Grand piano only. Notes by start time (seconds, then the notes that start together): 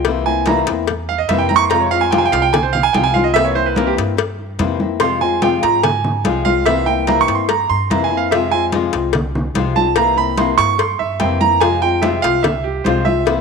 Already playing: G5
0.26 G#5
0.47 A#5
1.09 F5
1.18 D#5
1.29 E5
1.39 G5
1.49 A#5
1.56 C#6
1.63 C6
1.70 A#5
1.80 C#5
1.91 F5
2.01 G#5
2.11 G5
2.18 G#5
2.25 G5
2.32 F5
2.42 G5
2.53 G#5
2.63 C5
2.73 F5
2.83 G#5
2.93 G5
3.04 G#5
3.14 F5
3.24 D#5
3.34 E5
3.45 C#5
3.55 C5
3.66 B4
3.77 A#4
3.87 G4
5.00 C6
5.21 G#5
5.42 G5
5.63 A#5
5.83 G#5
6.45 F5
6.66 E5
6.86 G5
7.07 A#5
7.21 C#6
7.35 C6
7.49 A#5
7.70 C6
7.90 A#5
8.04 G#5
8.17 F5
8.31 E5
8.51 G#5
9.76 A5
9.96 A#5
10.18 B5
10.38 C6
10.58 C#6
10.79 C6
10.99 E5
11.20 G5
11.41 A#5
11.60 G#5
11.82 G5
12.02 E5
12.22 F5
12.43 E5
12.64 G4
12.84 C5
13.05 E5